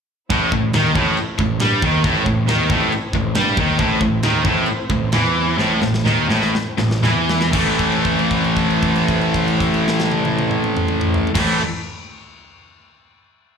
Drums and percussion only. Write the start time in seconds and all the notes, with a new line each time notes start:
0.30 kick, china
0.52 kick
0.73 snare, china
0.95 kick
1.17 china
1.39 kick
1.59 snare, china
1.82 kick
2.04 kick, china
2.26 kick
2.48 snare, china
2.70 kick
2.92 china
3.13 kick
3.35 snare, china
3.57 kick
3.79 kick, china
4.01 kick
4.23 snare, china
4.45 kick
4.66 china
4.90 kick
5.12 snare, china
5.59 snare
5.82 snare
5.94 snare
6.06 snare
6.30 snare
6.42 snare
6.55 snare
6.78 snare
6.91 snare
7.04 snare
7.29 snare
7.41 snare
7.53 kick, crash
7.79 kick, crash
7.92 crash
8.05 kick, crash
8.19 crash
8.31 kick, crash
8.44 crash
8.56 kick, crash
8.70 crash
8.83 kick, crash
8.96 crash
9.08 kick, crash
9.21 crash
9.34 kick, crash
9.48 crash
9.60 kick, crash
9.74 crash
9.88 snare
10.00 snare
10.12 high tom
10.25 high tom
10.39 high tom
10.51 mid tom
10.64 mid tom
10.77 mid tom
10.88 mid tom
11.01 mid tom
11.14 floor tom
11.27 floor tom
11.35 kick, snare, crash